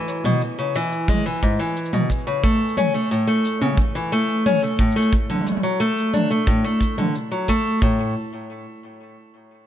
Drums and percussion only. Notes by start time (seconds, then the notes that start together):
0.08 shaker
0.24 mid tom, shaker
0.41 shaker
0.58 shaker
0.75 shaker
0.92 shaker
1.08 kick, mid tom, shaker
1.26 shaker
1.43 kick
1.60 shaker
1.68 shaker
1.77 shaker
1.85 shaker
1.93 mid tom, shaker
2.10 kick, shaker
2.28 shaker
2.44 kick, shaker
2.69 shaker
2.77 mid tom, shaker
3.12 shaker
3.28 shaker
3.45 shaker
3.62 mid tom, shaker
3.77 kick, shaker
3.96 shaker
4.30 shaker
4.46 mid tom, shaker
4.51 shaker
4.55 shaker
4.59 shaker
4.63 shaker
4.67 shaker
4.76 kick, shaker
4.80 shaker
4.91 shaker
4.97 shaker
5.02 shaker
5.13 kick, shaker
5.30 mid tom, shaker
5.35 mid tom
5.41 mid tom
5.47 mid tom, shaker
5.52 mid tom
5.57 mid tom
5.64 shaker
5.81 shaker
5.98 shaker
6.14 mid tom, shaker
6.31 shaker
6.47 kick, shaker
6.65 shaker
6.81 kick, shaker
6.98 mid tom, shaker
7.15 shaker
7.32 shaker
7.48 kick, shaker
7.66 shaker
7.82 kick